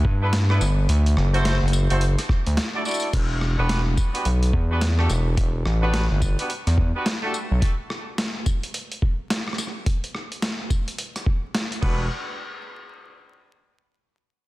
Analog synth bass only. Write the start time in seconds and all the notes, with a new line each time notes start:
0.05 G2
0.61 G1
0.89 D2
1.17 F#1
1.63 F#1
1.91 F#1
2.47 D2
3.13 E1
3.59 E1
4.25 B1
4.53 E2
5.10 E1
5.37 E1
5.66 A1
6.11 G1
6.67 E2
7.51 B1
11.82 E1